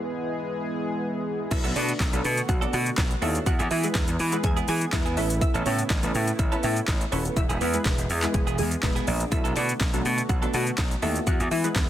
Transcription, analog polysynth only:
Already playing: B3 E4 G#4 B4
1.51 B3 D4 F#4 A4 B4
2.13 B3 D4 F#4 A4 B4
2.62 B3 D4 F#4 A4 D5
3.22 B3 D4 F#4 A4 C#5
3.84 G#3 B3 E4 G#4 B4
4.33 G#3 B3 E4 G#4 B4
4.93 G#3 B3 E4 G#4 B4
5.17 B3 C#4 E4 A4 B4
6.03 B3 C#4 E4 A4 B4
6.52 B3 C#4 E4 A4 B4
7.12 B3 C#4 E4 A4 B4
7.74 G#3 B3 E4 G#4 B4
8.23 G#3 B3 E4 G#4 B4
8.83 G#3 B3 E4 G#4 B4
9.32 A3 B3 D4 F#4 A4
9.94 A3 B3 D4 F#4 A4
10.42 A3 B3 D4 F#4 A4
11.02 A3 B3 D4 F#4 A4
11.64 G#3 B3 E4 G#4 B4

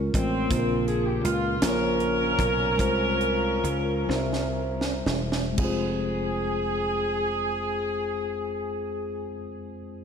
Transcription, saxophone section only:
0.14 F3 C4
0.87 G#4
1.06 G4
1.24 F4
1.63 C#4 F4 A#4
5.58 G#4

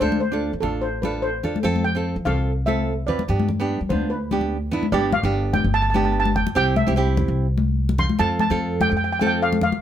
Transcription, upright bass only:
0.01 D2
0.53 D3
0.62 A1
1.64 F2
2.16 F3
2.25 C2
3.29 G2
3.81 G3
3.90 D2
4.92 G1
5.23 G1
5.64 G1
6.56 C2
6.87 C2
7.28 C2
8.19 F2
8.50 F2
8.91 F2

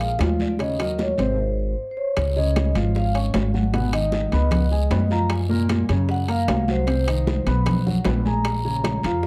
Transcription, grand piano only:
Already playing: G#3 G#4 A#4
0.19 F3 F4 F5
0.59 C#3 C#4 C#5
0.79 F#3 F#4 A#4
1.19 C3 C4 C5
2.36 C#3 C#4 C#5
2.75 F3 F4 F5
3.14 C#4 C#5 C#6
3.54 F#3 F#4 F#5
3.74 B2 B3 B4
3.93 D#3 D#4 D#5
4.33 B3 B4 B5
4.71 G#3 G#4 G#5
4.91 B3 B4 B5
5.10 F3 F4 F5
5.49 A#2 A#3 A#4
5.89 C#3 C#4 C#5
6.28 A#3 A#4 A#5
6.68 F#3 F#4 F#5
6.87 C3 C4 C5
7.07 D#3 D#4 D#5
7.47 B3 B4 B5
7.86 F#3 F#4 F#5
8.06 B3 B4 B5
8.25 G#3 G#4 G#5
8.65 C#3 C#4 C#5
9.05 F3 F4 F5

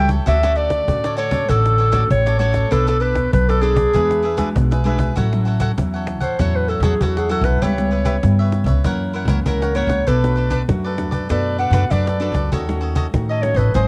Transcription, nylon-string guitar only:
Already playing: E3 G3 C#4 F#4
0.26 D3 A3 C#4 F#4
0.43 A3 C#4 F#4
0.87 A2 A3 C#4 F#4
1.31 A3 C#4 F#4
1.49 D3 A3 C#4 F#4
1.92 A3 C#4 F#4
2.11 A2
2.39 A3 C#4 F#4
2.71 B3 D4 A4 C#5
3.14 D4 A4 C#5
3.33 F#3
3.62 D4 A4 C#5
3.93 E3 G#3 D4 F#4
4.37 G#3 D4 F#4
4.56 B2
4.85 G#3 D4 F#4
5.16 A2 F#3 C#4 E4
5.33 F#3 C#4 E4
5.78 E3 F#3 C#4 E4
6.39 A2 F#3 C#4 E4
6.83 F#3 C#4 E4
7.00 E3
7.30 F#3 C#4 E4
7.62 C#3 G3 B3 E4
7.78 G3 B3 E4
8.23 C#3 G3 B3 E4
8.84 F#2 E3 A#3 C#4
9.28 E3 A#3 C#4
9.46 C#3
9.75 E3 A#3 C#4
10.07 B2 A3 D4 F#4
10.23 A3 D4 F#4
10.68 F#2 A3 D4 F#4
10.98 A3 D4 F#4
11.29 B2 A3 D4 F#4
11.73 A3 D4 F#4
11.90 F#2
12.20 A3 D4 F#4
12.52 D#3 A3 C#4 F#4
12.68 A3 C#4 F#4
13.13 D#3 A3 C#4 F#4
13.43 A3 C#4 F#4
13.74 G#2 F#3 C4 D#4

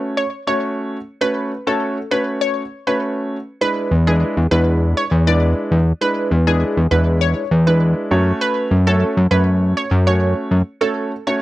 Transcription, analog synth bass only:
3.91 E2
4.37 E2
4.51 E2
5.11 E2
5.71 E2
6.31 E2
6.77 E2
6.91 E2
7.51 E2
8.11 F#2
8.71 F#2
9.17 F#2
9.31 F#2
9.91 F#2
10.51 F#2

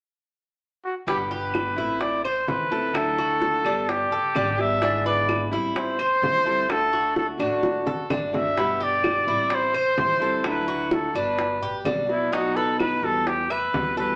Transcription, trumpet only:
0.84 F#4
1.07 G4
1.31 B4
2.01 D5
2.24 C5
2.48 B4
2.95 A4
3.89 G4
4.60 E5
5.06 D5
5.76 C5
6.71 A4
7.17 A4
7.41 F#4
8.35 E5
8.83 D5
9.55 C5
10.48 B4
10.93 A4
11.17 B4
12.10 E4
12.33 F#4
12.56 A4
12.79 B4
13.04 A4
13.27 G4
13.51 B4
13.99 B4

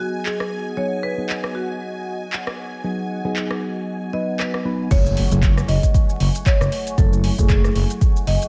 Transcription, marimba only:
0.00 F#4
0.25 G#4
0.77 C#5
1.03 B4
1.55 F#4
4.13 D#5
4.39 B4
4.91 C#5
5.68 D#5
6.46 C#5
6.98 A4
7.50 G#4
8.27 D#5

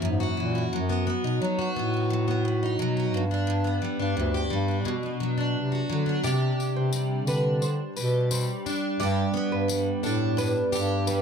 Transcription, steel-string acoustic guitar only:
Already playing: E3 A#3 E4 F#4
0.02 F#2
0.20 F#4
0.37 E3
0.55 E4
0.73 F#3
0.90 B3
1.07 B3
1.24 D#4
1.42 F#3
1.59 F#4
1.76 B3
1.94 D#4
2.10 F#3
2.28 B3
2.45 B3
2.63 D#4
2.79 F#3
2.97 F#4
3.14 G2
3.31 D4
3.47 G2
3.64 B3
3.82 G3
3.99 D4
4.17 G2
4.34 G4
4.50 G3
4.68 D4
4.85 B2
5.03 B3
5.20 F#3
5.38 D4
5.72 F#4
5.90 F#3
6.06 D4
6.24 C3 G4
6.93 G3
7.27 D4
7.97 G4
8.31 G3
8.66 D4
9.00 G2 G4
9.34 B3
9.68 G3
10.03 D4
10.37 G2
10.72 G4
11.08 G3

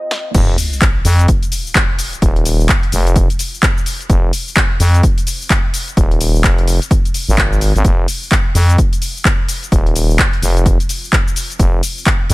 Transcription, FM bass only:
0.35 F1
1.05 F2
2.22 D#1
2.93 F1
4.10 F1
4.80 F2
5.97 D#1
6.44 F1
7.28 G#1
7.76 G#1
7.85 F1
8.55 F2
9.72 D#1
10.42 F1
11.59 F1
12.30 F2

